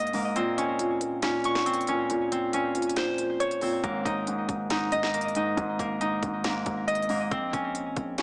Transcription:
0.00 0.14 G#2 loud
0.00 0.14 A#3 medium
0.00 1.75 D#4 medium
0.00 1.70 D#5 loud
0.07 closed hi-hat medium
0.13 0.36 G#2 medium
0.13 3.36 A#3 medium
0.13 open hi-hat medium
0.36 0.78 A#2 medium
0.36 1.65 C4 loud
0.36 closed hi-hat medium
0.58 1.22 C#4 medium
0.58 closed hi-hat medium
0.79 0.99 A#2 medium
0.79 closed hi-hat medium
1.01 1.22 A#2 medium
1.01 closed hi-hat medium
1.22 1.43 A#2 medium
1.22 1.88 C#4 medium
1.22 snare loud
1.22 closed hi-hat loud
1.44 1.87 A#2 medium
1.44 2.75 C#6 medium
1.44 closed hi-hat medium
1.55 snare medium
1.66 2.31 C4 medium
1.66 closed hi-hat medium
1.74 closed hi-hat medium
1.81 closed hi-hat medium
1.87 2.09 A#2 medium
1.87 2.53 C#4 medium
1.87 closed hi-hat medium
2.10 2.52 A#2 medium
2.10 closed hi-hat medium
2.32 3.62 C4 medium
2.32 closed hi-hat medium
2.53 2.73 A#2 medium
2.53 5.44 C#4 medium
2.53 closed hi-hat medium
2.75 2.95 A#2 medium
2.75 closed hi-hat medium
2.82 closed hi-hat medium
2.89 closed hi-hat medium
2.96 3.17 A#2 medium
2.96 4.95 C5 medium
2.96 snare loud
2.96 closed hi-hat medium
3.18 3.60 A#2 medium
3.18 closed hi-hat medium
3.40 5.31 C#5 loud
3.40 closed hi-hat medium
3.51 closed hi-hat medium
3.61 3.83 A#2 medium
3.61 6.62 C4 medium
3.61 open hi-hat medium
3.83 4.04 G#1 loud
3.83 4.26 G#2 medium
3.83 5.14 A#3 medium
3.83 kick loud
3.83 closed hi-hat medium
4.05 4.47 G#1 loud
4.05 4.71 D#4 medium
4.05 kick loud
4.05 closed hi-hat medium
4.27 4.47 G#2 medium
4.27 closed hi-hat medium
4.48 5.53 G#1 loud
4.48 4.69 G#2 medium
4.48 kick medium
4.48 closed hi-hat medium
4.70 4.91 G#2 medium
4.70 5.36 D#4 medium
4.70 snare loud
4.70 closed hi-hat medium
4.92 5.34 G#2 medium
4.92 6.70 D#5 medium
4.92 closed hi-hat medium
5.03 snare medium
5.14 5.79 A#3 medium
5.14 closed hi-hat medium
5.21 closed hi-hat medium
5.28 closed hi-hat medium
5.35 5.55 G#2 medium
5.35 6.00 D#4 medium
5.35 closed hi-hat medium
5.57 5.78 G#1 loud
5.57 6.00 G#2 loud
5.57 kick loud
5.57 closed hi-hat medium
5.79 6.21 G#1 loud
5.79 6.44 A#3 medium
5.79 kick loud
5.79 closed hi-hat medium
6.01 6.22 G#2 medium
6.01 8.22 D#4 medium
6.01 closed hi-hat medium
6.23 6.64 G#1 loud
6.23 6.43 G#2 medium
6.23 kick medium
6.23 closed hi-hat medium
6.44 6.65 G#2 medium
6.44 7.10 A#3 medium
6.44 snare loud
6.44 closed hi-hat loud
6.66 7.29 G#1 loud
6.66 7.08 G#2 medium
6.66 kick medium
6.66 closed hi-hat medium
6.87 8.22 D#5 medium
6.87 closed hi-hat medium
6.95 closed hi-hat medium
7.02 closed hi-hat medium
7.09 7.31 G#2 medium
7.09 8.22 A#3 medium
7.09 open hi-hat medium
7.31 7.52 A#1 loud
7.31 8.22 C4 loud
7.31 kick loud
7.31 closed hi-hat medium
7.53 7.87 A#1 loud
7.53 8.18 C#4 medium
7.53 kick loud
7.53 closed hi-hat medium
7.75 closed hi-hat medium
7.86 7.96 G#1 loud
7.96 8.22 A#1 loud
7.96 kick medium
7.96 closed hi-hat medium
8.18 8.22 C#4 medium
8.18 snare loud
8.18 closed hi-hat loud

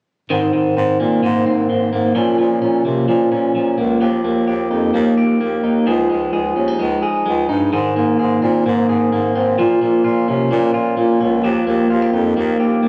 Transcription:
0.30 0.49 G#2 medium
0.30 0.52 D#3 medium
0.30 0.76 C4 medium
0.53 0.73 G#2 medium
0.53 1.22 D#3 medium
0.77 0.96 G#2 medium
0.77 1.45 C4 medium
1.00 1.19 A#2 medium
1.00 1.92 A#3 soft
1.23 1.42 G#2 loud
1.23 1.68 D#3 medium
1.46 1.65 G#2 medium
1.46 2.15 C4 medium
1.69 1.88 G#2 medium
1.69 2.15 D#3 soft
1.92 2.11 G#2 medium
1.92 2.84 A#3 medium
2.15 2.34 A#2 medium
2.15 2.38 F3 medium
2.15 2.60 C#4 medium
2.39 2.58 A#2 medium
2.39 3.08 F3 medium
2.62 2.81 A#2 medium
2.62 3.31 C#4 medium
2.85 3.04 C3 medium
2.85 3.77 A#3 soft
3.08 3.27 A#2 medium
3.08 3.55 F3 medium
3.31 3.51 A#2 medium
3.31 4.06 C#4 medium
3.54 3.74 A#2 medium
3.54 4.01 F3 medium
3.78 3.97 C#2 medium
3.78 4.06 A#3 medium
4.01 4.20 D#2 medium
4.01 5.86 F3 medium
4.01 4.46 G4 medium
4.24 4.43 D#2 medium
4.24 4.93 A#3 medium
4.47 4.67 D#2 medium
4.47 5.16 G4 medium
4.71 4.90 F2 medium
4.71 5.63 D#4 soft
4.93 5.13 D#2 loud
4.93 5.39 A#3 medium
5.17 5.36 D#2 medium
5.17 5.87 G4 medium
5.40 5.59 D#2 medium
5.40 5.92 A#3 medium
5.63 5.83 D#2 medium
5.63 6.56 D#4 medium
5.87 6.06 C#2 medium
5.87 7.72 F3 medium
5.87 6.33 G#4 medium
6.10 6.29 C#2 medium
6.10 6.79 G#3 medium
6.33 6.52 C#2 medium
6.33 7.02 G#4 medium
6.56 6.75 D#2 medium
6.56 6.68 C#4 soft
6.68 7.48 D#4 soft
6.79 6.99 C#2 medium
6.79 7.25 G#3 medium
7.02 7.72 G#4 medium
7.26 7.45 C#2 medium
7.26 7.77 G#3 medium
7.49 7.68 G2 medium
7.49 7.77 D#4 medium
7.73 7.92 G#2 medium
7.73 9.58 D#3 medium
7.73 8.18 G#4 medium
7.96 8.15 G#2 medium
7.96 8.65 A#3 medium
8.19 8.38 G#2 medium
8.19 8.88 G#4 medium
8.42 8.61 A#2 medium
8.42 9.34 C4 medium
8.66 8.85 G#2 loud
8.66 9.12 A#3 medium
8.89 9.08 G#2 medium
8.89 9.58 G#4 medium
9.12 9.31 G#2 medium
9.12 9.81 A#3 soft
9.35 9.54 G#2 medium
9.35 9.63 C4 medium
9.58 9.78 A#2 medium
9.58 11.44 F3 medium
9.58 10.04 F4 soft
9.81 10.01 A#2 medium
9.81 10.50 A#3 medium
10.04 10.24 A#2 medium
10.04 10.74 F4 medium
10.28 10.47 C3 medium
10.28 11.19 C#4 medium
10.51 10.70 A#2 loud
10.51 10.97 A#3 medium
10.74 10.93 A#2 medium
10.74 11.44 F4 medium
10.97 11.16 A#2 medium
10.97 11.48 A#3 medium
11.20 11.40 C#2 medium
11.20 11.48 C#4 medium
11.44 11.63 D#2 loud
11.44 12.88 F3 medium
11.44 11.90 G4 medium
11.67 11.86 D#2 medium
11.67 12.36 A#3 medium
11.90 12.09 D#2 medium
11.90 12.02 F4 medium
12.02 12.59 G4 medium
12.13 12.32 F2 medium
12.13 12.88 D#4 soft
12.37 12.55 D#2 loud
12.37 12.82 A#3 medium
12.59 12.79 D#2 medium
12.59 12.88 G4 medium
12.82 12.88 D#2 medium
12.82 12.88 A#3 medium

